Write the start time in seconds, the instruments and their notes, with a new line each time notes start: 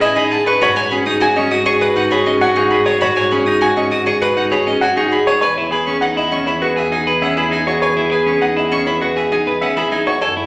Already playing: double bass A2, clarinet C#4
0.01 clean electric guitar E4, grand piano D#5, violin G#5
0.16 clean electric guitar D#4, grand piano G#4, violin B5
0.31 clean electric guitar G#4, violin A5
0.46 clean electric guitar B4, grand piano B4, violin C#6
0.61 double bass G#2, clarinet F#4, clean electric guitar F#4, grand piano C#5, violin B5
0.76 clean electric guitar C#5, violin G#5
0.91 clean electric guitar C#4, grand piano G#4, violin B5
1.06 clean electric guitar D#4, violin D#6
1.21 clean electric guitar F#4, violin G#5, grand piano G#5
1.36 clean electric guitar C#4, grand piano D#5, violin C#6
1.51 clean electric guitar F#4, violin D#6
1.66 clean electric guitar G#4, grand piano C#5, violin C#6
1.81 grand piano B4, clean electric guitar B4, violin D#6
1.96 clean electric guitar D#4, violin F#5
2.10 grand piano G#4, clean electric guitar C#5, violin B5
2.26 clean electric guitar C#4, violin D#5
2.41 clean electric guitar F#4, grand piano F#5, violin G#5
2.56 clean electric guitar D#4, grand piano G#4, violin C#6
2.70 clean electric guitar G#4, violin B5
2.85 grand piano C#5, clean electric guitar C#5, violin D#6
3.01 clean electric guitar F#4, grand piano C#5, violin B5
3.16 clean electric guitar C#5, violin G#5
3.31 clean electric guitar C#4, grand piano G#4, violin B5
3.46 clean electric guitar D#4, violin D#6
3.61 clean electric guitar F#4, violin G#5, grand piano G#5
3.76 clean electric guitar C#4, grand piano D#5, violin C#6
3.91 clean electric guitar F#4, violin D#6
4.06 clean electric guitar G#4, grand piano C#5, violin C#6
4.21 grand piano B4, clean electric guitar B4, violin D#6
4.37 clean electric guitar D#4, violin F#5
4.51 grand piano G#4, clean electric guitar C#5, violin B5
4.67 clean electric guitar C#4, violin D#5
4.81 clean electric guitar F#4, grand piano F#5, violin G#5
4.96 clean electric guitar D#4, grand piano G#4, violin C#6
5.12 clean electric guitar G#4, violin B5
5.27 grand piano C#5, clean electric guitar C#5, violin D#6
5.41 double bass E2, clarinet G#4, clean electric guitar B4, grand piano C#5, violin G#5
5.58 clean electric guitar E4
5.71 grand piano G#4, clean electric guitar B4, violin G#5
5.86 clean electric guitar C#4, violin C#6
6.01 clean electric guitar D#4, grand piano F#5, violin F#5
6.17 clean electric guitar E4, grand piano D#5
6.32 clean electric guitar C#4, violin C#6
6.46 clean electric guitar E4, grand piano C#5, violin B5
6.62 clean electric guitar F#4, grand piano B4, violin C#6
6.76 clean electric guitar G#4, violin E5
6.92 clean electric guitar D#4, grand piano G#4, violin G#5
7.07 clean electric guitar B4
7.22 clean electric guitar C#4, grand piano E5, violin F#5
7.37 clean electric guitar E4, grand piano G#4, violin B5
7.51 clean electric guitar D#4, violin G#5
7.67 clean electric guitar F#4, grand piano C#5, violin C#6
7.82 clean electric guitar B4, grand piano C#5, violin G#5
7.97 clean electric guitar E4
8.11 grand piano G#4, clean electric guitar B4, violin G#5
8.26 clean electric guitar C#4, violin C#6
8.41 clean electric guitar D#4, violin F#5, grand piano F#5
8.57 clean electric guitar E4, grand piano D#5
8.72 clean electric guitar C#4, violin C#6
8.86 clean electric guitar E4, grand piano C#5, violin B5
9.01 clean electric guitar F#4, grand piano B4, violin C#6
9.16 clean electric guitar G#4, violin E5
9.32 clean electric guitar D#4, grand piano G#4, violin G#5
9.47 clean electric guitar B4
9.61 clean electric guitar C#4, grand piano E5, violin F#5
9.76 clean electric guitar E4, grand piano G#4, violin B5
9.92 clean electric guitar D#4, violin G#5
10.07 clean electric guitar F#4, grand piano C#5, violin C#6
10.21 double bass F#2, clarinet A4, clean electric guitar A4, grand piano C#5, violin G#5
10.37 clean electric guitar E4